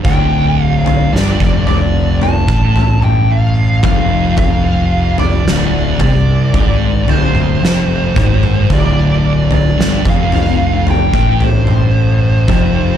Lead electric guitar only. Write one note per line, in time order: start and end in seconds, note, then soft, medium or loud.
0.05 0.66 G5 loud
0.66 0.85 F5 loud
0.85 1.11 F5 loud
1.13 1.66 D5 loud
1.68 2.18 D5 medium
2.23 3.04 A5 loud
3.04 3.31 G5 medium
3.31 3.84 F5 loud
3.85 4.37 F5 medium
4.38 5.15 F5 loud
5.19 6.00 D5 medium
6.01 7.12 D5 medium
7.10 8.68 C5 medium
8.74 9.49 D5 medium
9.54 10.04 D5 medium
10.09 10.85 F5 loud
10.90 11.44 G5 medium
11.44 12.97 C5 medium